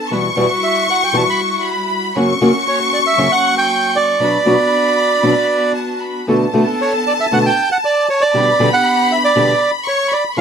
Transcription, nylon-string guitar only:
0.10 E2 B2 E3 G3 B3 F#4
0.36 E2 B2 E3 G3 B3 F#4
1.13 E2 B2 E3 G3 B3 F#4
2.15 F#2 C#3 F#3 A#3 C#4 F#4
2.41 F#2 C#3 F#3 A#3 C#4 F#4
3.17 F#2 C#3 F#3 A#3 C#4 F#4
4.19 B2 F#3 B3 D4 F#4
4.46 B2 F#3 B3 D4 F#4
5.23 B2 F#3 B3 D4 F#4
6.27 B2 D3 A3 B3 F#4
6.53 B2 D3 A3 B3 F#4
7.31 B2 D3 A3 B3 F#4
8.34 B2 D3 G3 B3 G4
8.59 B2 D3 G3 B3 G4
9.36 B2 D3 G3 B3 G4
10.37 C#3 F3 G#3 C#4 F4

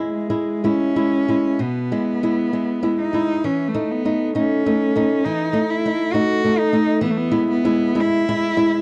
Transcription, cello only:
Already playing: G#3
0.13 G#3
0.65 C#4
1.62 B3
3.01 D#4
3.45 C#4
3.68 A3
3.91 B3
4.37 C#4
5.25 D#4
5.70 E4
6.13 F#4
6.59 D#4
7.03 B3
7.11 A3
7.17 B3
7.50 B3
8.00 E4

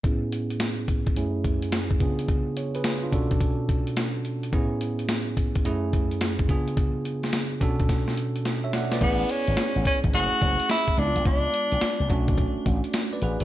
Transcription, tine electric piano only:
0.03 A2 B3 C#4 E4 G#4
1.16 F#2 A3 C#4 E4 G#4
2.00 C#3 B3 D4 F4 G#4
2.57 C#5
2.75 G#4 B4
2.85 F4 G#4
3.03 D4 F4
3.12 B2 C#4 D4 F#4 A4
4.52 A2 B3 C#4 E4 G#4
5.65 F#2 A3 C#4 E4 G#4
6.48 C#3 B3 D4 F4 G#4
7.60 B2 C#4 D4 F#4 A4
8.64 C#5 E5
8.74 D5 F#5
8.92 B4 D5
9.01 B3 C#4 E4 G#4
10.13 A3 C#4 E4 G#4
10.97 G#3 B3 D4 E4
11.06 F4
12.09 A3 C#4 D4 F#4
13.13 B4 D5
13.22 G#4 B4
13.41 A4

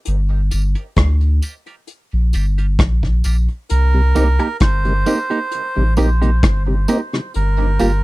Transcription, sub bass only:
0.07 G1
0.53 G1
0.98 D2
2.13 A#1
2.35 G1
2.80 A#1
3.26 A#1
3.71 C2
4.17 C2
4.62 G1
5.77 A1
5.99 A#1
6.44 G1
7.36 G1
7.81 G1

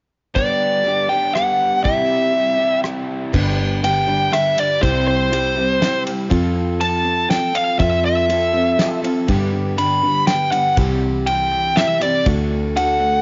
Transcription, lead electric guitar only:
0.35 D5
1.09 G5
1.35 F#5
1.84 E5
3.84 G5
4.34 E5
4.59 D5
4.82 C5
5.08 C5
6.81 A5
7.30 G5
7.55 F5
7.79 E5
8.05 E5
9.78 B5
10.27 G5
10.52 F#5
11.27 G5
11.77 E5
12.03 D5
12.77 F#5

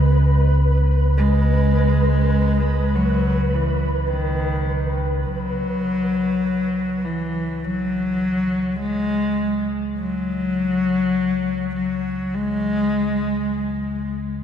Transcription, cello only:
Already playing: G#3
1.17 G#3
2.96 F#3
3.54 E3
4.11 D#3
5.27 F#3
7.05 E3
7.64 F#3
8.80 G#3
9.99 F#3
11.76 F#3
12.34 G#3

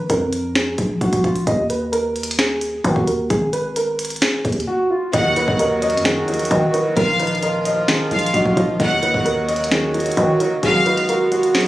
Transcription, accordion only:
5.13 D#3 F#3 A#3 F#4
6.97 F3 F4
8.80 F#3 F#4
10.63 G#3 B3

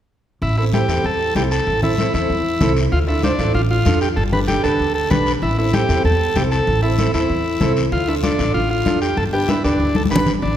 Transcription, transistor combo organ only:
0.42 E4
0.58 E4
0.74 G4
1.06 A4
1.36 G4
1.52 A4
1.83 E4
2.15 E4
2.92 F4
3.08 E4
3.24 D4
3.55 F4
3.71 F4
4.02 G4
4.16 A4
4.33 B4
4.48 G4
4.64 A4
4.95 A4
5.11 B4
5.43 E4
5.59 E4
5.74 G4
6.05 A4
6.36 G4
6.52 A4
6.82 E4
7.14 E4
7.92 F4
8.08 E4
8.23 D4
8.54 F4
8.71 F4
9.02 G4
9.17 A4
9.33 G4
9.48 E4
9.64 D4
9.96 A4
10.11 B4
10.43 D4

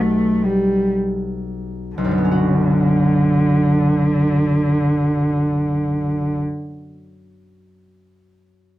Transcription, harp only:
Already playing: B1 G4 B4 D5 F#5
1.98 B1
2.04 F#2
2.11 F#3
2.18 B3
2.24 C#4
2.31 F#4

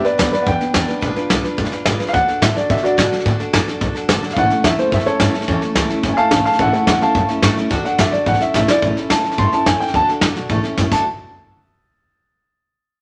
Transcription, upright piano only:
0.05 B4 D5
0.19 B4 D5
0.32 B4 D5
0.43 F#5
0.48 G5
2.09 F5
2.13 F#5
2.42 E5
2.56 D5
2.71 E5
2.83 F#4 D5
4.33 F5
4.38 F#5
4.65 E5
4.79 C5
4.94 E5
5.06 A4 C#5
6.13 F5 G#5
6.18 A5
6.31 F5 A5
6.45 F5 A5
6.60 A4 F#5
6.73 A4 F#5
6.87 A4 F#5
7.02 F5 A5
7.85 F#5
7.99 E5
8.12 D5
8.27 F#5
8.42 E5
8.55 E5
8.69 D5
9.11 A5
9.39 C6
9.53 A5
9.67 G#5
9.80 G5
9.95 A5
10.92 A5

